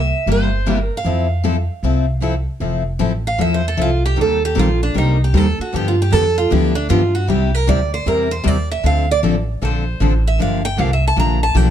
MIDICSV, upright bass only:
0, 0, Header, 1, 3, 480
1, 0, Start_track
1, 0, Key_signature, -1, "major"
1, 0, Tempo, 389358
1, 1292, Time_signature, 4, 2, 24, 8
1, 14430, End_track
2, 0, Start_track
2, 0, Title_t, "Upright bass"
2, 0, Program_c, 0, 32
2, 0, Note_on_c, 0, 36, 81
2, 134, Note_off_c, 0, 36, 0
2, 326, Note_on_c, 0, 31, 76
2, 1098, Note_off_c, 0, 31, 0
2, 1290, Note_on_c, 0, 41, 70
2, 2061, Note_off_c, 0, 41, 0
2, 2253, Note_on_c, 0, 36, 74
2, 3024, Note_off_c, 0, 36, 0
2, 3207, Note_on_c, 0, 29, 68
2, 3679, Note_off_c, 0, 29, 0
2, 3696, Note_on_c, 0, 33, 82
2, 4164, Note_off_c, 0, 33, 0
2, 4175, Note_on_c, 0, 40, 76
2, 4644, Note_off_c, 0, 40, 0
2, 4652, Note_on_c, 0, 36, 73
2, 5123, Note_off_c, 0, 36, 0
2, 5140, Note_on_c, 0, 39, 71
2, 5608, Note_off_c, 0, 39, 0
2, 5630, Note_on_c, 0, 34, 80
2, 6093, Note_off_c, 0, 34, 0
2, 6106, Note_on_c, 0, 36, 88
2, 6571, Note_off_c, 0, 36, 0
2, 6578, Note_on_c, 0, 39, 86
2, 6859, Note_off_c, 0, 39, 0
2, 7078, Note_on_c, 0, 43, 76
2, 7537, Note_off_c, 0, 43, 0
2, 7553, Note_on_c, 0, 41, 84
2, 8014, Note_off_c, 0, 41, 0
2, 8036, Note_on_c, 0, 38, 86
2, 8496, Note_off_c, 0, 38, 0
2, 8507, Note_on_c, 0, 43, 83
2, 8970, Note_off_c, 0, 43, 0
2, 8979, Note_on_c, 0, 36, 78
2, 9446, Note_off_c, 0, 36, 0
2, 9468, Note_on_c, 0, 38, 83
2, 9930, Note_off_c, 0, 38, 0
2, 9940, Note_on_c, 0, 40, 79
2, 10405, Note_off_c, 0, 40, 0
2, 10423, Note_on_c, 0, 39, 78
2, 10886, Note_off_c, 0, 39, 0
2, 10894, Note_on_c, 0, 38, 70
2, 11361, Note_off_c, 0, 38, 0
2, 11379, Note_on_c, 0, 33, 75
2, 11843, Note_off_c, 0, 33, 0
2, 11857, Note_on_c, 0, 34, 79
2, 12321, Note_off_c, 0, 34, 0
2, 12334, Note_on_c, 0, 33, 82
2, 12799, Note_off_c, 0, 33, 0
2, 12824, Note_on_c, 0, 31, 76
2, 13283, Note_off_c, 0, 31, 0
2, 13298, Note_on_c, 0, 36, 91
2, 13759, Note_off_c, 0, 36, 0
2, 13767, Note_on_c, 0, 34, 86
2, 14233, Note_off_c, 0, 34, 0
2, 14238, Note_on_c, 0, 35, 85
2, 14430, Note_off_c, 0, 35, 0
2, 14430, End_track
3, 0, Start_track
3, 0, Title_t, "Muted upright bass strokes"
3, 6895, Note_on_c, 9, 29, 36
3, 7018, Note_off_c, 9, 29, 0
3, 14430, End_track
0, 0, End_of_file